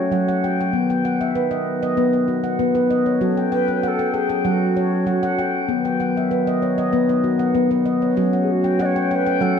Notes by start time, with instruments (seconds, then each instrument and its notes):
Already playing: brass ensemble F#3 A3 C#4, native american-style wooden flute F#4, handpan C#5
0.12 handpan F#3 F#5
0.28 handpan F#5
0.44 handpan G5
0.61 handpan G5
0.73 brass ensemble D#3 B3, handpan B3
0.90 handpan G5
1.05 handpan F#5
1.21 handpan E5
1.35 handpan B4
1.51 handpan D#5
1.83 handpan D#5
1.97 handpan B3 B4
2.13 handpan D#5
2.28 handpan F#4
2.44 handpan F#5
2.59 handpan B3 B4
2.75 handpan B4
2.90 handpan D#5
3.06 handpan C#5
3.21 handpan F#3 F#4, brass ensemble C#4 A4
3.37 handpan G5
3.52 native american-style wooden flute B4, handpan G5
3.68 handpan G5
3.83 native american-style wooden flute B4, handpan F#5
3.87 native american-style wooden flute A4
3.99 handpan G5
4.07 native american-style wooden flute A4
4.14 native american-style wooden flute G#4, handpan G5
4.29 handpan G5
4.38 native american-style wooden flute G#4
4.45 handpan F#3 F#5, native american-style wooden flute G#4
4.51 native american-style wooden flute F#4
4.76 handpan C#5
5.06 handpan F#3 F#5
5.23 handpan F#5
5.39 handpan G5
5.69 brass ensemble D#3 B3, handpan B3
5.85 handpan G5
6.00 handpan F#5
6.17 handpan E5
6.31 handpan B4
6.47 handpan D#5
6.62 handpan C#5
6.78 handpan D#5
6.93 handpan B3 B4
7.09 handpan D#5
7.24 handpan F#4
7.39 handpan F#5
7.54 handpan B3 B4
7.71 handpan B4
7.86 handpan D#5
8.02 handpan C#5
8.17 handpan F#3 F#4, brass ensemble A3 C#4
8.33 handpan F#5
8.42 native american-style wooden flute G#4
8.51 native american-style wooden flute F#4
8.64 handpan G5
8.79 native american-style wooden flute D#5, handpan F#5
8.85 native american-style wooden flute C#5
8.96 handpan G5
9.10 native american-style wooden flute C#5, handpan G5
9.15 native american-style wooden flute B4
9.26 handpan G5
9.40 handpan F#3 F#5, native american-style wooden flute A4